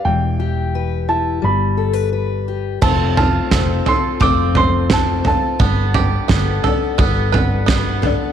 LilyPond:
<<
  \new Staff \with { instrumentName = "Upright piano" } { \time 4/4 \key f \lydian \tempo 4 = 87 g''4. a''8 b''4. r8 | a''8 a''4 c'''8 d'''8 c'''8 a''8 a''8~ | a''4. r2 r8 | }
  \new Staff \with { instrumentName = "Steel-string acoustic guitar" } { \time 4/4 \key f \lydian << { r8 g'8 b'8 e'8 r8 a'16 b'16 b'8 g'8 | r1 | r1 | } \\ { <e g>2 g2 | r1 | r1 | } >> }
  \new Staff \with { instrumentName = "Twelve-string acoustic guitar" } { \time 4/4 \key f \lydian r1 | <f a c' f' a'>4 <a c' f' a'>8 <c' f' a'>8 <f a c' f' a'>4 <a c' f' a'>8 <c' f' a'>8 | <g b d' a'>4 <g b d' a'>8 <b d' a'>8 <g b d' a'>4 <g b d' a'>8 <b d' a'>8 | }
  \new Staff \with { instrumentName = "Five-string banjo" } { \time 4/4 \key f \lydian r1 | c'8 f'8 c'8 a'8 c'8 c''8 c'4 | b8 g'8 b8 a'8 b8 b'8 b4 | }
  \new Staff \with { instrumentName = "Fretless electric bass" } { \clef bass \time 4/4 \key f \lydian e,,2 g,,2 | f,,4 f,,8 r8 f,,2 | g,,4 g,,8 r8 g,,2 | }
  \new DrumStaff \with { instrumentName = "Drums" } \drummode { \time 4/4 r4 r4 r4 r4 | <cymc bd tomfh>8 tomfh8 <bd sn tomfh>8 tomfh8 <bd tomfh>8 tomfh8 <bd sn tomfh>8 tomfh8 | <bd tomfh>8 tomfh8 <bd sn tomfh>8 tomfh8 <bd tomfh>8 tomfh8 <bd sn tomfh>8 tomfh8 | }
>>